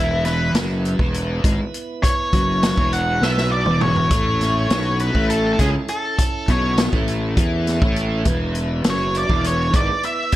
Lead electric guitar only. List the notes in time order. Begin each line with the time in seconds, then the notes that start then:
Already playing: E4
0.25 B4
2.03 C#5
2.93 F#5
3.23 E5
3.52 D5
3.82 C#5
5.01 B4
5.30 A4
5.53 A4
5.60 G#4
5.89 A4
6.50 C#5
8.90 C#5
9.18 D5
9.47 C#5
9.76 D5
10.05 E5